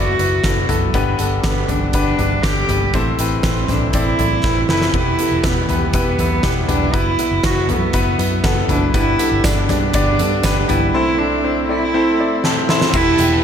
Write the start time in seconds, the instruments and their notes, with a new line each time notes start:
Already playing: fingered electric bass F#1, string section F#3 B3 E4, grand piano B3 E4 F#4 A4 B4 D5, cello F#4
0.19 fingered electric bass F#1, grand piano B3 E4 F#4 B4, closed hi-hat
0.44 fingered electric bass F#1, grand piano B3 E4 F#4 A4, kick, snare, closed hi-hat
0.69 fingered electric bass F#1, grand piano B3 E4 F#4 A4, closed hi-hat, floor tom
0.94 fingered electric bass G1, grand piano G2 B3 D4 G4 B4, string section G3 D4, kick, closed hi-hat
1.19 fingered electric bass G1, grand piano B3 D4 G4 A4, closed hi-hat
1.44 fingered electric bass G1, grand piano B3 D4 G4 A4, cello B3, kick, snare, closed hi-hat
1.68 fingered electric bass G1, grand piano B3 D4 G4 B4, cello D4, closed hi-hat, floor tom
1.93 fingered electric bass G1, grand piano B3 D4 G4 B4, cello D4, kick, closed hi-hat
2.19 fingered electric bass G1, grand piano B3 D4 G4 B4, closed hi-hat, floor tom
2.43 fingered electric bass G1, grand piano B3 D4 G4 A4, cello G4, kick, snare, closed hi-hat
2.69 fingered electric bass G1, grand piano B3 D4 G4 B4, closed hi-hat, floor tom
2.94 fingered electric bass A1, grand piano A2 C4 E4 A4 C5, string section E3 A3 C4, kick, closed hi-hat
3.19 fingered electric bass A1, grand piano C4 E4 A4 B4, closed hi-hat
3.43 fingered electric bass A1, grand piano C4 E4 A4 B4, cello C4, kick, snare, closed hi-hat
3.68 fingered electric bass A1, grand piano C4 E4 A4 C5, cello D4, snare, closed hi-hat, floor tom
3.93 fingered electric bass A1, grand piano C4 E4 A4 D5, cello E4, kick, closed hi-hat
4.19 fingered electric bass A1, grand piano C4 E4 A4 D5, closed hi-hat, floor tom
4.44 fingered electric bass A1, grand piano C4 E4 A4 B4, kick, snare
4.69 fingered electric bass F#1, grand piano C4 E4 A4 B4, cello E4, snare
4.82 snare
4.94 fingered electric bass E1, string section E3 E4 G4 B4, grand piano E3 B3 E4 G4 B4, cello E4, kick, crash
5.19 grand piano B3 E4 G4 A4, closed hi-hat
5.31 fingered electric bass E1
5.44 fingered electric bass E1, grand piano B3 E4 G4 B4, cello B3, kick, snare, closed hi-hat
5.69 fingered electric bass E2, grand piano B3 E4 G4 B4, closed hi-hat, floor tom
5.93 fingered electric bass E1, grand piano B3 E4 G4 B4, cello B3, kick, closed hi-hat
6.19 fingered electric bass E2, grand piano B3 E4 G4 B4, closed hi-hat, floor tom
6.43 fingered electric bass E1, grand piano B3 E4 G4 B4, kick, snare, closed hi-hat
6.68 fingered electric bass E1, grand piano B3 E4 G4 B4, cello D4, closed hi-hat, floor tom
6.93 fingered electric bass F#1, string section F#3 B3, grand piano B3 E4 F#4 B4, cello E4, kick, closed hi-hat
7.19 grand piano B3 E4 F#4 B4, closed hi-hat
7.31 fingered electric bass F#1
7.44 fingered electric bass F#1, grand piano B3 E4 F#4 B4, cello F#4, kick, snare, closed hi-hat
7.69 fingered electric bass F#2, grand piano B3 E4 F#4 A4, cello B3, closed hi-hat, floor tom
7.93 fingered electric bass F#1, grand piano B3 E4 F#4 B4, kick, closed hi-hat
8.18 fingered electric bass F#2, grand piano B3 E4 F#4 B4, closed hi-hat
8.44 fingered electric bass F#1, grand piano B3 E4 F#4 A4, kick, snare, closed hi-hat
8.68 fingered electric bass F#1, grand piano B3 E4 F#4 B4, cello D4, closed hi-hat, floor tom
8.94 fingered electric bass G1, grand piano G2 B3 D4 G4 B4, string section G3 D4, cello E4, kick, closed hi-hat, tambourine
9.19 grand piano B3 D4 G4 A4, closed hi-hat, tambourine
9.31 fingered electric bass G1
9.44 fingered electric bass G1, grand piano B3 D4 G4 D5, cello D4, kick, snare, closed hi-hat, tambourine
9.68 fingered electric bass G2, grand piano B3 D4 G4 D5, cello D4, snare, closed hi-hat, floor tom, tambourine
9.94 fingered electric bass G1, grand piano B3 D4 G4 D5, kick, closed hi-hat, tambourine
10.19 fingered electric bass G2, grand piano B3 D4 G4 A4, closed hi-hat, tambourine
10.43 fingered electric bass G1, grand piano B3 D4 G4 B4, kick, snare, closed hi-hat, tambourine
10.68 fingered electric bass G1, grand piano B3 D4 G4 B4, cello E4, closed hi-hat, floor tom, tambourine
10.93 grand piano A2 C4 E4 A4 C5, string section A3 C4 E4, cello E4
11.18 grand piano C4 E4 A4 C5, cello D4
11.44 grand piano C4 E4 A4 C5
11.69 grand piano C4 E4 A4 D5, cello E4
11.94 grand piano C4 E4 A4 C5
12.19 grand piano C4 E4 A4 D5
12.44 grand piano C4 E4 A4 C5 A5, snare
12.69 grand piano C4 E4 A4 C5 E5, snare
12.81 snare
12.93 fingered electric bass E1, string section E3 E4 G4 B4, grand piano E3 B3 E4 G4 B4 E5, cello E4, violin section A4 A5, kick, crash, tambourine
13.18 fingered electric bass E1, grand piano B3 E4 G4 B4 G5, hi-hat pedal, open hi-hat, tambourine